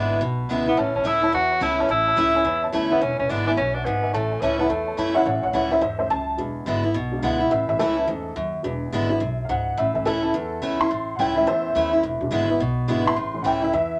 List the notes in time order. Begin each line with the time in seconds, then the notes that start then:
Already playing: G#1 E2 D3 G#3 B3 D4 E4
0.21 B1 B2
0.49 C#2 D3 G#3 B3 E4
0.67 B3 E4
0.77 A1 A2 C#4 C#5 E5 A5
0.94 A1 C#4 C#5 E5 A5
1.04 C#2 E3 A3 C#4 E4 C#5 E5 A5
1.22 C#4 E4 C#5 E5 A5
1.32 E2 F#4 C#5 E5 A5
1.50 C#5 E5 B5
1.60 C#2 E3 A3 C#4 E4 C#5 E5 A5
1.78 C#4 C#5 E5 A5
1.88 A1 A2 E4 C#5 E5 A5
2.06 C#5 E5 A5
2.16 C#2 E3 A3 C#4 E4 C#5 E5 B5
2.34 C#4 E4 C#5 E5 G#5
2.45 E2 C#5 E5 B5
2.62 C#5 E5 A5
2.72 D2 E3 A3 C#4 E4 C#5 E5 A5
2.90 B3 C#4 E4 C#5 E5 B5
3.01 E1 E2 C#4 B4 E5 G#5
3.18 E1 C#4 B4 E5 G#5
3.28 G#1 D3 G#3 B3 D4 E4 B4 E5 F#5
3.46 B3 D4 E4 B4 E5 G#5
3.56 B1 F#2 C#4 B4 E5 G#5
3.74 D4 B4 E5 F#5
3.85 G#1 G#2 B3 B4 E5 G#5
4.02 B4 E5 G#5
4.12 A1 A2 A3 C#5 E5 A5
4.30 C#5 E5 G#5
4.41 C#2 E3 A3 C#4 E4 C#5 E5 A5
4.58 B3 C#4 E4 C#5 E5 A5
4.68 E2 A3 C#5 E5 A5
4.86 C#5 E5 A5
4.97 F#2 E3 A3 C#4 E4 C#5 E5 A5
5.14 C#4 E4 C#5 E5 F#5
5.22 A1 A2 E3 A3 C#5 F5
5.26 C#4 F#5
5.43 A1 C#5 F#5
5.53 C#2 E3 A3 C#4 E4 C#5 F#5
5.71 C#4 E4 C5 E5
5.81 E2 G#2 C5 E5
5.98 E3 A3 C#4 C5 E5
6.10 C#2 F#2 A5
6.37 E1 E2 F#3 G#3 D4
6.66 G#1 D3 G#3 B3 E4
6.83 B3 E4
6.94 B1 B2
7.12 F#3 G#3 D4
7.19 C#2 D3 F5
7.23 G#3 B3 E4 F#5
7.40 B3 E4
7.51 A1 A2 E5
7.68 A1 E3 A3 C#4 E5
7.79 C#2 E3 A3 C#4 E4 A4
7.97 C#4 E4
8.07 E2 G#2 E3 A3 C#4
8.36 D#2 F#2
8.63 E1 E2 F#3 G#3 D4
8.92 G#1 D3 G#3 B3 E4
9.09 F#3 G#3 B3 D4 E4
9.20 B1 F#2
9.45 F5
9.49 C#2 G#2 F#5
9.77 A1 A2 E5
9.94 A1 E3 A3 C#4 E5
10.05 C#2 E3 A3 C#4 E4 A4
10.23 C#4 E4
10.34 E2
10.62 C#2 E3 A3 C#4 E4
10.80 C#4 E4 C6
10.91 A1 A2
11.15 C#2 E3 A3 F#5
11.20 C#4 E4 G5
11.36 E3 A3 C#4 E4 E5
11.47 E2 C5 E5
11.75 D#2 E3 A3 C#4 E4
11.93 C#4 E4
12.03 E1 E2
12.21 E1 F#3 G#3 D4
12.31 G#1 D3 G#3 B3 E4
12.49 B3 E4
12.60 B1 B2
12.88 G#1 D3 F#3 G#3 B3 D4 E4
13.05 B3 E4 C6
13.16 A1 A2
13.34 E3 A3 C#4
13.42 C#2 E3 A3 C#4 E4 F#5
13.46 G5
13.62 C#4 E4 E5
13.73 E2 E5